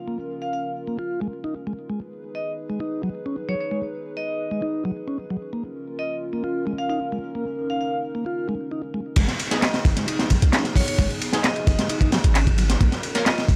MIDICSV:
0, 0, Header, 1, 7, 480
1, 0, Start_track
1, 0, Tempo, 454545
1, 81, Time_signature, 4, 2, 24, 8
1, 14318, End_track
2, 0, Start_track
2, 0, Title_t, "Vibraphone"
2, 0, Program_c, 0, 11
2, 441, Note_on_c, 0, 77, 75
2, 517, Note_off_c, 0, 77, 0
2, 561, Note_on_c, 0, 77, 64
2, 640, Note_off_c, 0, 77, 0
2, 2481, Note_on_c, 0, 75, 79
2, 2624, Note_off_c, 0, 75, 0
2, 3682, Note_on_c, 0, 73, 76
2, 3761, Note_off_c, 0, 73, 0
2, 3807, Note_on_c, 0, 73, 67
2, 3880, Note_off_c, 0, 73, 0
2, 4401, Note_on_c, 0, 75, 84
2, 4881, Note_off_c, 0, 75, 0
2, 6324, Note_on_c, 0, 75, 82
2, 6465, Note_off_c, 0, 75, 0
2, 7164, Note_on_c, 0, 77, 84
2, 7239, Note_off_c, 0, 77, 0
2, 7282, Note_on_c, 0, 77, 76
2, 7361, Note_off_c, 0, 77, 0
2, 8130, Note_on_c, 0, 77, 78
2, 8202, Note_off_c, 0, 77, 0
2, 8243, Note_on_c, 0, 77, 70
2, 8321, Note_off_c, 0, 77, 0
2, 10160, Note_on_c, 0, 75, 91
2, 10304, Note_off_c, 0, 75, 0
2, 11364, Note_on_c, 0, 73, 84
2, 11442, Note_off_c, 0, 73, 0
2, 11487, Note_on_c, 0, 73, 74
2, 11560, Note_off_c, 0, 73, 0
2, 12087, Note_on_c, 0, 75, 92
2, 12564, Note_off_c, 0, 75, 0
2, 14005, Note_on_c, 0, 75, 92
2, 14146, Note_off_c, 0, 75, 0
2, 14318, End_track
3, 0, Start_track
3, 0, Title_t, "Analog synth pad"
3, 0, Program_c, 1, 89
3, 0, Note_on_c, 1, 61, 71
3, 0, Note_on_c, 1, 65, 68
3, 0, Note_on_c, 1, 70, 84
3, 1961, Note_off_c, 1, 61, 0
3, 1961, Note_off_c, 1, 70, 0
3, 1962, Note_off_c, 1, 65, 0
3, 2002, Note_on_c, 1, 63, 76
3, 2002, Note_on_c, 1, 68, 68
3, 2002, Note_on_c, 1, 71, 79
3, 5803, Note_off_c, 1, 63, 0
3, 5803, Note_off_c, 1, 68, 0
3, 5803, Note_off_c, 1, 71, 0
3, 5837, Note_on_c, 1, 65, 67
3, 5840, Note_on_c, 1, 61, 73
3, 5840, Note_on_c, 1, 70, 83
3, 7740, Note_off_c, 1, 65, 0
3, 7761, Note_on_c, 1, 63, 70
3, 9642, Note_off_c, 1, 61, 0
3, 9642, Note_off_c, 1, 70, 0
3, 9662, Note_off_c, 1, 63, 0
3, 9678, Note_on_c, 1, 63, 77
3, 9679, Note_on_c, 1, 68, 87
3, 9680, Note_on_c, 1, 59, 78
3, 13481, Note_off_c, 1, 63, 0
3, 13482, Note_off_c, 1, 59, 0
3, 13482, Note_off_c, 1, 68, 0
3, 13522, Note_on_c, 1, 61, 83
3, 13523, Note_on_c, 1, 65, 76
3, 13523, Note_on_c, 1, 70, 87
3, 14318, Note_off_c, 1, 61, 0
3, 14318, Note_off_c, 1, 65, 0
3, 14318, Note_off_c, 1, 70, 0
3, 14318, End_track
4, 0, Start_track
4, 0, Title_t, "Synth stab"
4, 0, Program_c, 2, 62
4, 10045, Note_on_c, 2, 56, 102
4, 10046, Note_on_c, 2, 63, 94
4, 10046, Note_on_c, 2, 68, 112
4, 10047, Note_on_c, 2, 59, 93
4, 10119, Note_off_c, 2, 56, 0
4, 10119, Note_off_c, 2, 63, 0
4, 10120, Note_off_c, 2, 59, 0
4, 10120, Note_off_c, 2, 68, 0
4, 11967, Note_on_c, 2, 56, 102
4, 11967, Note_on_c, 2, 63, 95
4, 11967, Note_on_c, 2, 68, 106
4, 11968, Note_on_c, 2, 59, 92
4, 12040, Note_off_c, 2, 56, 0
4, 12040, Note_off_c, 2, 63, 0
4, 12040, Note_off_c, 2, 68, 0
4, 12041, Note_off_c, 2, 59, 0
4, 13885, Note_on_c, 2, 58, 100
4, 13885, Note_on_c, 2, 61, 93
4, 13885, Note_on_c, 2, 70, 113
4, 13886, Note_on_c, 2, 65, 93
4, 13959, Note_off_c, 2, 58, 0
4, 13959, Note_off_c, 2, 61, 0
4, 13959, Note_off_c, 2, 65, 0
4, 13959, Note_off_c, 2, 70, 0
4, 14318, End_track
5, 0, Start_track
5, 0, Title_t, "Tonewheel organ"
5, 0, Program_c, 3, 16
5, 80, Note_on_c, 3, 58, 68
5, 190, Note_off_c, 3, 58, 0
5, 923, Note_on_c, 3, 58, 62
5, 1029, Note_off_c, 3, 58, 0
5, 1042, Note_on_c, 3, 65, 88
5, 1270, Note_off_c, 3, 65, 0
5, 1282, Note_on_c, 3, 56, 85
5, 1347, Note_off_c, 3, 56, 0
5, 1522, Note_on_c, 3, 63, 72
5, 1631, Note_off_c, 3, 63, 0
5, 1763, Note_on_c, 3, 56, 65
5, 1828, Note_off_c, 3, 56, 0
5, 2002, Note_on_c, 3, 56, 70
5, 2111, Note_off_c, 3, 56, 0
5, 2847, Note_on_c, 3, 56, 60
5, 2951, Note_off_c, 3, 56, 0
5, 2960, Note_on_c, 3, 63, 88
5, 3189, Note_off_c, 3, 63, 0
5, 3203, Note_on_c, 3, 54, 85
5, 3268, Note_off_c, 3, 54, 0
5, 3441, Note_on_c, 3, 61, 71
5, 3551, Note_off_c, 3, 61, 0
5, 3682, Note_on_c, 3, 54, 67
5, 3747, Note_off_c, 3, 54, 0
5, 3921, Note_on_c, 3, 56, 74
5, 4031, Note_off_c, 3, 56, 0
5, 4765, Note_on_c, 3, 56, 65
5, 4870, Note_off_c, 3, 56, 0
5, 4881, Note_on_c, 3, 63, 97
5, 5110, Note_off_c, 3, 63, 0
5, 5122, Note_on_c, 3, 54, 90
5, 5187, Note_off_c, 3, 54, 0
5, 5361, Note_on_c, 3, 61, 74
5, 5471, Note_off_c, 3, 61, 0
5, 5601, Note_on_c, 3, 54, 70
5, 5667, Note_off_c, 3, 54, 0
5, 5839, Note_on_c, 3, 58, 75
5, 5950, Note_off_c, 3, 58, 0
5, 6684, Note_on_c, 3, 58, 66
5, 6789, Note_off_c, 3, 58, 0
5, 6798, Note_on_c, 3, 65, 99
5, 7028, Note_off_c, 3, 65, 0
5, 7041, Note_on_c, 3, 56, 90
5, 7107, Note_off_c, 3, 56, 0
5, 7280, Note_on_c, 3, 63, 75
5, 7390, Note_off_c, 3, 63, 0
5, 7521, Note_on_c, 3, 56, 70
5, 7587, Note_off_c, 3, 56, 0
5, 7762, Note_on_c, 3, 58, 74
5, 7871, Note_off_c, 3, 58, 0
5, 8605, Note_on_c, 3, 58, 69
5, 8710, Note_off_c, 3, 58, 0
5, 8724, Note_on_c, 3, 65, 95
5, 8951, Note_off_c, 3, 65, 0
5, 8962, Note_on_c, 3, 56, 88
5, 9027, Note_off_c, 3, 56, 0
5, 9202, Note_on_c, 3, 63, 72
5, 9311, Note_off_c, 3, 63, 0
5, 9442, Note_on_c, 3, 56, 71
5, 9508, Note_off_c, 3, 56, 0
5, 9683, Note_on_c, 3, 56, 81
5, 9792, Note_off_c, 3, 56, 0
5, 10524, Note_on_c, 3, 56, 74
5, 10629, Note_off_c, 3, 56, 0
5, 10640, Note_on_c, 3, 63, 104
5, 10869, Note_off_c, 3, 63, 0
5, 10879, Note_on_c, 3, 54, 97
5, 10946, Note_off_c, 3, 54, 0
5, 11121, Note_on_c, 3, 61, 80
5, 11231, Note_off_c, 3, 61, 0
5, 11360, Note_on_c, 3, 54, 76
5, 11426, Note_off_c, 3, 54, 0
5, 11600, Note_on_c, 3, 56, 77
5, 11710, Note_off_c, 3, 56, 0
5, 12444, Note_on_c, 3, 56, 78
5, 12549, Note_off_c, 3, 56, 0
5, 12562, Note_on_c, 3, 63, 102
5, 12790, Note_off_c, 3, 63, 0
5, 12803, Note_on_c, 3, 54, 104
5, 12868, Note_off_c, 3, 54, 0
5, 13044, Note_on_c, 3, 61, 81
5, 13152, Note_off_c, 3, 61, 0
5, 13284, Note_on_c, 3, 54, 78
5, 13348, Note_off_c, 3, 54, 0
5, 13521, Note_on_c, 3, 58, 77
5, 13631, Note_off_c, 3, 58, 0
5, 14318, End_track
6, 0, Start_track
6, 0, Title_t, "808-style bass"
6, 0, Program_c, 4, 38
6, 9680, Note_on_c, 4, 32, 93
6, 9772, Note_off_c, 4, 32, 0
6, 10402, Note_on_c, 4, 32, 83
6, 10493, Note_off_c, 4, 32, 0
6, 11008, Note_on_c, 4, 35, 92
6, 11092, Note_off_c, 4, 35, 0
6, 11600, Note_on_c, 4, 32, 93
6, 11692, Note_off_c, 4, 32, 0
6, 12325, Note_on_c, 4, 32, 87
6, 12415, Note_off_c, 4, 32, 0
6, 12930, Note_on_c, 4, 32, 100
6, 13475, Note_off_c, 4, 32, 0
6, 13524, Note_on_c, 4, 34, 97
6, 13614, Note_off_c, 4, 34, 0
6, 14240, Note_on_c, 4, 34, 85
6, 14318, Note_off_c, 4, 34, 0
6, 14318, End_track
7, 0, Start_track
7, 0, Title_t, "Drums"
7, 9673, Note_on_c, 9, 51, 77
7, 9676, Note_on_c, 9, 49, 97
7, 9678, Note_on_c, 9, 36, 91
7, 9682, Note_on_c, 9, 42, 57
7, 9778, Note_off_c, 9, 51, 0
7, 9782, Note_off_c, 9, 49, 0
7, 9784, Note_off_c, 9, 36, 0
7, 9787, Note_off_c, 9, 42, 0
7, 9799, Note_on_c, 9, 38, 44
7, 9806, Note_on_c, 9, 42, 33
7, 9905, Note_off_c, 9, 38, 0
7, 9911, Note_off_c, 9, 42, 0
7, 9921, Note_on_c, 9, 51, 93
7, 9922, Note_off_c, 9, 51, 0
7, 9922, Note_on_c, 9, 51, 65
7, 10028, Note_off_c, 9, 51, 0
7, 10044, Note_on_c, 9, 38, 49
7, 10046, Note_on_c, 9, 42, 66
7, 10150, Note_off_c, 9, 38, 0
7, 10152, Note_off_c, 9, 42, 0
7, 10161, Note_on_c, 9, 51, 89
7, 10162, Note_on_c, 9, 38, 105
7, 10162, Note_on_c, 9, 39, 110
7, 10162, Note_on_c, 9, 42, 53
7, 10267, Note_off_c, 9, 39, 0
7, 10267, Note_off_c, 9, 42, 0
7, 10267, Note_off_c, 9, 51, 0
7, 10268, Note_off_c, 9, 38, 0
7, 10282, Note_on_c, 9, 38, 67
7, 10285, Note_on_c, 9, 42, 35
7, 10388, Note_off_c, 9, 38, 0
7, 10391, Note_off_c, 9, 42, 0
7, 10401, Note_on_c, 9, 36, 109
7, 10401, Note_on_c, 9, 51, 89
7, 10406, Note_off_c, 9, 51, 0
7, 10406, Note_on_c, 9, 51, 67
7, 10507, Note_off_c, 9, 36, 0
7, 10511, Note_off_c, 9, 51, 0
7, 10524, Note_on_c, 9, 38, 37
7, 10525, Note_on_c, 9, 42, 67
7, 10630, Note_off_c, 9, 38, 0
7, 10631, Note_off_c, 9, 42, 0
7, 10643, Note_on_c, 9, 42, 54
7, 10643, Note_on_c, 9, 51, 83
7, 10748, Note_off_c, 9, 42, 0
7, 10749, Note_off_c, 9, 51, 0
7, 10762, Note_on_c, 9, 38, 59
7, 10767, Note_on_c, 9, 42, 34
7, 10868, Note_off_c, 9, 38, 0
7, 10872, Note_off_c, 9, 42, 0
7, 10876, Note_on_c, 9, 51, 73
7, 10882, Note_off_c, 9, 51, 0
7, 10882, Note_on_c, 9, 51, 93
7, 10885, Note_on_c, 9, 36, 94
7, 10987, Note_off_c, 9, 51, 0
7, 10990, Note_off_c, 9, 36, 0
7, 11006, Note_on_c, 9, 42, 70
7, 11112, Note_off_c, 9, 42, 0
7, 11118, Note_on_c, 9, 38, 108
7, 11118, Note_on_c, 9, 51, 90
7, 11123, Note_on_c, 9, 39, 103
7, 11123, Note_on_c, 9, 42, 56
7, 11224, Note_off_c, 9, 38, 0
7, 11224, Note_off_c, 9, 51, 0
7, 11229, Note_off_c, 9, 39, 0
7, 11229, Note_off_c, 9, 42, 0
7, 11239, Note_on_c, 9, 38, 54
7, 11247, Note_on_c, 9, 42, 32
7, 11344, Note_off_c, 9, 38, 0
7, 11353, Note_off_c, 9, 42, 0
7, 11358, Note_on_c, 9, 36, 104
7, 11363, Note_on_c, 9, 51, 87
7, 11364, Note_on_c, 9, 46, 87
7, 11463, Note_off_c, 9, 36, 0
7, 11469, Note_off_c, 9, 46, 0
7, 11469, Note_off_c, 9, 51, 0
7, 11488, Note_on_c, 9, 42, 64
7, 11594, Note_off_c, 9, 42, 0
7, 11599, Note_on_c, 9, 51, 85
7, 11601, Note_on_c, 9, 36, 106
7, 11605, Note_on_c, 9, 42, 59
7, 11705, Note_off_c, 9, 51, 0
7, 11706, Note_off_c, 9, 36, 0
7, 11711, Note_off_c, 9, 42, 0
7, 11728, Note_on_c, 9, 42, 33
7, 11833, Note_off_c, 9, 42, 0
7, 11843, Note_on_c, 9, 51, 70
7, 11844, Note_off_c, 9, 51, 0
7, 11844, Note_on_c, 9, 51, 89
7, 11949, Note_off_c, 9, 51, 0
7, 11961, Note_on_c, 9, 38, 59
7, 11968, Note_on_c, 9, 42, 69
7, 12067, Note_off_c, 9, 38, 0
7, 12074, Note_off_c, 9, 42, 0
7, 12077, Note_on_c, 9, 51, 78
7, 12083, Note_on_c, 9, 38, 117
7, 12084, Note_on_c, 9, 39, 109
7, 12084, Note_on_c, 9, 42, 55
7, 12183, Note_off_c, 9, 51, 0
7, 12188, Note_off_c, 9, 38, 0
7, 12190, Note_off_c, 9, 39, 0
7, 12190, Note_off_c, 9, 42, 0
7, 12209, Note_on_c, 9, 42, 35
7, 12314, Note_off_c, 9, 42, 0
7, 12325, Note_on_c, 9, 36, 98
7, 12325, Note_on_c, 9, 51, 84
7, 12431, Note_off_c, 9, 36, 0
7, 12431, Note_off_c, 9, 51, 0
7, 12447, Note_on_c, 9, 42, 62
7, 12448, Note_on_c, 9, 38, 59
7, 12553, Note_off_c, 9, 42, 0
7, 12554, Note_off_c, 9, 38, 0
7, 12559, Note_on_c, 9, 51, 92
7, 12564, Note_on_c, 9, 42, 56
7, 12665, Note_off_c, 9, 51, 0
7, 12669, Note_off_c, 9, 42, 0
7, 12680, Note_on_c, 9, 36, 104
7, 12687, Note_on_c, 9, 42, 35
7, 12785, Note_off_c, 9, 36, 0
7, 12792, Note_off_c, 9, 42, 0
7, 12799, Note_on_c, 9, 51, 70
7, 12803, Note_on_c, 9, 38, 120
7, 12804, Note_off_c, 9, 51, 0
7, 12804, Note_on_c, 9, 51, 88
7, 12909, Note_off_c, 9, 38, 0
7, 12910, Note_off_c, 9, 51, 0
7, 12927, Note_on_c, 9, 42, 68
7, 13033, Note_off_c, 9, 42, 0
7, 13043, Note_on_c, 9, 39, 109
7, 13043, Note_on_c, 9, 42, 55
7, 13046, Note_on_c, 9, 51, 103
7, 13149, Note_off_c, 9, 39, 0
7, 13149, Note_off_c, 9, 42, 0
7, 13152, Note_off_c, 9, 51, 0
7, 13167, Note_on_c, 9, 36, 90
7, 13169, Note_on_c, 9, 42, 33
7, 13273, Note_off_c, 9, 36, 0
7, 13275, Note_off_c, 9, 42, 0
7, 13283, Note_on_c, 9, 51, 87
7, 13288, Note_off_c, 9, 51, 0
7, 13288, Note_on_c, 9, 51, 76
7, 13394, Note_off_c, 9, 51, 0
7, 13407, Note_on_c, 9, 38, 58
7, 13408, Note_on_c, 9, 42, 65
7, 13513, Note_off_c, 9, 38, 0
7, 13513, Note_off_c, 9, 42, 0
7, 13524, Note_on_c, 9, 36, 98
7, 13525, Note_on_c, 9, 42, 56
7, 13525, Note_on_c, 9, 51, 83
7, 13629, Note_off_c, 9, 36, 0
7, 13630, Note_off_c, 9, 42, 0
7, 13630, Note_off_c, 9, 51, 0
7, 13645, Note_on_c, 9, 38, 47
7, 13647, Note_on_c, 9, 42, 32
7, 13750, Note_off_c, 9, 38, 0
7, 13752, Note_off_c, 9, 42, 0
7, 13761, Note_on_c, 9, 51, 62
7, 13762, Note_off_c, 9, 51, 0
7, 13762, Note_on_c, 9, 51, 86
7, 13868, Note_off_c, 9, 51, 0
7, 13886, Note_on_c, 9, 42, 66
7, 13891, Note_on_c, 9, 38, 43
7, 13992, Note_off_c, 9, 42, 0
7, 13997, Note_off_c, 9, 38, 0
7, 14004, Note_on_c, 9, 39, 113
7, 14004, Note_on_c, 9, 42, 57
7, 14005, Note_on_c, 9, 38, 125
7, 14009, Note_on_c, 9, 51, 93
7, 14110, Note_off_c, 9, 38, 0
7, 14110, Note_off_c, 9, 39, 0
7, 14110, Note_off_c, 9, 42, 0
7, 14115, Note_off_c, 9, 51, 0
7, 14129, Note_on_c, 9, 42, 33
7, 14132, Note_on_c, 9, 38, 60
7, 14234, Note_off_c, 9, 42, 0
7, 14238, Note_off_c, 9, 38, 0
7, 14240, Note_on_c, 9, 36, 93
7, 14242, Note_on_c, 9, 51, 73
7, 14244, Note_off_c, 9, 51, 0
7, 14244, Note_on_c, 9, 51, 84
7, 14318, Note_off_c, 9, 36, 0
7, 14318, Note_off_c, 9, 51, 0
7, 14318, End_track
0, 0, End_of_file